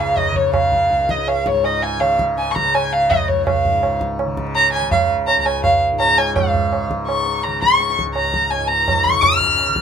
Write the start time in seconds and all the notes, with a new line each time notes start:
Already playing: C#2 G#2 C#3
0.00 F5
0.17 D#5, tabla na, tabla ge
0.31 C#3, tabla ge
0.36 C#5
0.54 F5, tabla na, tabla ge
0.72 tabla ge
0.89 C#2, tabla te
1.00 tabla te
1.09 D#5, tabla ke
1.18 tabla te
1.28 F5, tabla na
1.45 G#2 C#5, tabla ke
1.55 tabla te
1.64 D#5, tabla na
1.83 G#5, tabla te
2.00 C#3 F5, tabla na
2.19 tabla ke
2.38 G#5, tabla te
2.47 C#6, tabla te
2.55 C#3 A#5, tabla ke
2.65 tabla te
2.74 G#5, tabla na
2.92 F5, tabla te
3.10 C#2 D#5, tabla na, tabla ge
3.28 C#5, tabla ge
3.46 F5, tabla na, tabla ge
3.65 G#2, tabla ge
3.83 tabla na
4.01 tabla ke
4.19 tabla na
4.25 C#3
4.37 tabla ke
4.47 tabla te
4.55 A#5, tabla na
4.73 G#5, tabla na
4.81 C#3
4.91 F5, tabla na, tabla ge
5.27 A#5, tabla na
5.36 C#2
5.41 A#5
5.46 G#5, tabla na
5.63 F5, tabla na, tabla ge
5.92 G#2
6.00 A#5, tabla na
6.18 G#5, tabla na
6.35 G#2 F5, tabla na, tabla ge
6.54 tabla ge
6.73 tabla na
6.91 C#3, tabla ke
7.07 C#6, tabla na
7.26 tabla te
7.43 C#3 A#5, tabla na
7.61 C#6, tabla ke
7.72 tabla te
7.80 tabla te
7.90 tabla te
7.99 C#2, tabla ke
8.07 tabla te
8.14 A#5, tabla na
8.34 tabla ke
8.51 G#5, tabla na
8.57 G#2
8.67 A#5, tabla te
8.88 tabla na, tabla ge
9.04 C#6, tabla ge
9.12 C#3
9.21 F6, tabla na, tabla ge
9.40 tabla ge
9.59 tabla na
9.68 C#3
9.76 tabla ke